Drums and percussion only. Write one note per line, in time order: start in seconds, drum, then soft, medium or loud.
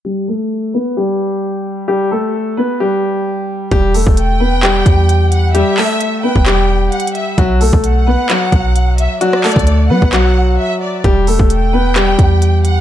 3.71 kick loud
3.71 closed hi-hat medium
3.94 open hi-hat medium
4.07 kick loud
4.17 closed hi-hat medium
4.63 cross-stick medium
4.63 clap loud
4.63 closed hi-hat medium
4.86 kick loud
4.86 closed hi-hat medium
5.09 closed hi-hat medium
5.32 closed hi-hat medium
5.55 closed hi-hat medium
5.78 clap loud
5.78 open hi-hat medium
6.01 closed hi-hat medium
6.36 kick loud
6.46 cross-stick medium
6.46 clap loud
6.46 closed hi-hat medium
6.92 closed hi-hat soft
7.00 closed hi-hat medium
7.07 closed hi-hat medium
7.15 closed hi-hat medium
7.38 kick loud
7.38 closed hi-hat medium
7.61 open hi-hat medium
7.73 kick loud
7.84 closed hi-hat medium
8.30 cross-stick medium
8.30 clap loud
8.30 closed hi-hat medium
8.52 kick medium
8.52 closed hi-hat medium
8.76 closed hi-hat medium
8.98 closed hi-hat medium
9.21 closed hi-hat medium
9.33 cross-stick loud
9.44 clap loud
9.44 closed hi-hat medium
9.44 open hi-hat medium
9.52 closed hi-hat medium
9.56 kick loud
9.56 closed hi-hat medium
9.67 closed hi-hat medium
10.02 kick loud
10.13 cross-stick medium
10.13 clap loud
10.13 closed hi-hat medium
11.04 kick loud
11.04 closed hi-hat medium
11.27 open hi-hat medium
11.39 kick loud
11.50 closed hi-hat medium
11.96 cross-stick medium
11.96 clap loud
11.96 closed hi-hat medium
12.19 kick loud
12.19 closed hi-hat medium
12.42 closed hi-hat medium
12.65 closed hi-hat medium